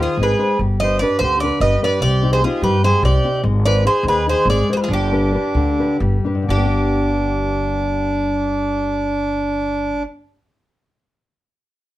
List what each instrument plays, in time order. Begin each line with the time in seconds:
Already playing: nylon-string guitar D#3, accordion F4
0.00 nylon-string guitar D#4 G#4 C5, bouzouki G#4
0.17 upright bass G#1, nylon-string guitar G#3
0.21 accordion G#4, bouzouki B4
0.38 nylon-string guitar D#4 G#4 C5
0.59 upright bass G1, nylon-string guitar G3
0.80 nylon-string guitar D4 G4 B4, accordion C5, bouzouki D#5
0.99 nylon-string guitar D4 G4 B4, accordion B4, bouzouki D5
1.19 upright bass D2, nylon-string guitar D3, accordion G4, bouzouki C5
1.40 nylon-string guitar D4 G4 B4, accordion B4, bouzouki D5
1.60 upright bass G1, nylon-string guitar G3, accordion B4, bouzouki D#5
1.82 nylon-string guitar D4 G4 B4, accordion B4, bouzouki D5
2.01 upright bass C2, nylon-string guitar C3, accordion G4, bouzouki D5
2.22 nylon-string guitar C4 D#4 G4
2.32 accordion G#4, bouzouki C5
2.43 nylon-string guitar C4 D#4 G4, accordion F4, bouzouki G#4
2.62 upright bass G2, nylon-string guitar G3, accordion G4, bouzouki B4
2.83 nylon-string guitar C4 D#4 G4, accordion G#4, bouzouki C5
3.03 upright bass C2, nylon-string guitar C3, accordion G4, bouzouki D5
3.23 nylon-string guitar C4 D#4 G4
3.43 upright bass G#1, nylon-string guitar G#3
3.65 nylon-string guitar D#4 G#4 C5, accordion B4, bouzouki D5
3.84 nylon-string guitar D#4 G#4 C5, accordion G#4, bouzouki C5
4.03 upright bass D#2, nylon-string guitar D#3
4.08 accordion G#4, bouzouki B4
4.27 nylon-string guitar D#4 G#4 C5, accordion G#4, bouzouki C5
4.45 upright bass G#1, nylon-string guitar G#3
4.50 accordion G#4, bouzouki D5
4.69 nylon-string guitar D#4 G#4 C5, accordion G#4
4.73 accordion G4, bouzouki B4 C5
4.81 accordion F4, bouzouki G#4
4.88 upright bass G1, nylon-string guitar G3, accordion D4
4.93 bouzouki G4
5.12 nylon-string guitar D4 G4 B4
5.34 nylon-string guitar D4 G4 B4
5.54 upright bass D2, nylon-string guitar D3
5.79 nylon-string guitar D4 G4 B4
6.00 upright bass G1, nylon-string guitar G3
6.24 nylon-string guitar D4 G4 B4
6.35 nylon-string guitar G2
6.42 nylon-string guitar D3
6.48 upright bass G1, nylon-string guitar G3, accordion D4, bouzouki G4
6.57 nylon-string guitar B3
6.65 nylon-string guitar D4